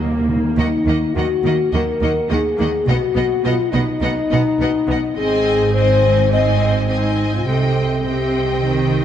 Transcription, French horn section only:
0.56 1.11 D#4 medium
1.13 1.72 F#4 medium
1.72 2.30 A#4 medium
2.31 2.87 G#4 medium
2.87 3.45 F#4 medium
3.45 3.74 F4 medium
3.70 5.15 D#4 medium
5.17 5.73 G#4 medium
5.74 6.30 C5 medium
6.32 6.73 D#5 medium
6.89 7.31 D#4 medium
7.34 7.47 F4 medium
7.47 8.04 A4 medium
8.05 9.05 G4 medium

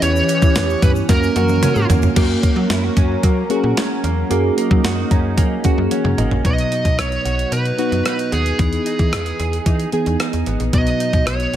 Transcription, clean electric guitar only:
0.00 1.15 E3 medium
0.00 0.28 C#4 medium
0.29 0.82 C#4 medium
0.56 1.09 B3 medium
0.83 1.62 C#4 medium
1.09 1.89 A#3 medium
1.36 2.70 F#4 medium
1.63 2.96 C#4 medium
1.90 2.16 A#3 medium
2.16 2.42 A#3 medium
2.43 3.23 A#3 medium
2.70 2.84 E4 medium
2.84 3.50 F#4 medium
2.97 3.76 C#4 medium
3.24 4.03 A#3 medium
3.51 4.84 F#4 medium
3.77 5.10 C#4 medium
4.04 4.30 A#3 medium
4.31 4.57 A#3 medium
4.58 5.37 A#3 medium
4.84 5.64 F#4 medium
5.11 5.90 C#4 medium
5.38 6.17 A#3 medium
5.65 7.25 F#4 medium
5.91 6.50 C#4 medium
6.18 6.50 A#3 medium
6.45 8.59 F#3 medium
6.72 7.52 D#4 medium
6.98 8.32 B3 soft
7.25 7.78 F#4 medium
7.52 8.06 D#4 medium
7.79 8.64 F#4 medium
8.06 8.86 D#4 medium
8.33 9.12 B3 medium
8.59 10.73 E3 medium
8.86 9.66 D#4 medium
9.13 10.47 B3 medium
9.40 9.92 G#4 medium
9.67 10.20 D#4 medium
9.93 10.79 G#4 medium
10.20 11.00 D#4 medium
10.47 11.27 B3 medium
10.74 11.56 F#3 medium
11.00 11.56 D#4 medium
11.27 11.56 B3 medium

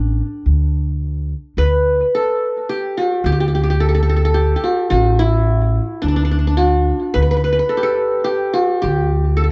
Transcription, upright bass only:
0.00 0.20 A1 medium
0.46 1.32 D2 medium
1.57 2.00 D2 medium
3.24 4.54 D2 medium
4.91 5.78 A1 medium
6.04 6.91 D2 medium
7.16 7.59 D2 medium
8.84 9.52 D2 medium

